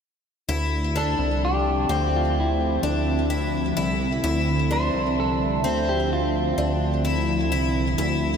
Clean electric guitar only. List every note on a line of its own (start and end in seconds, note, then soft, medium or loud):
0.98 1.44 A4 medium
1.45 2.16 G4 medium
2.16 2.39 F4 medium
2.40 3.28 E4 medium
4.72 5.15 C5 medium
5.20 5.91 A4 medium
5.89 6.12 G4 medium
6.13 7.02 F4 medium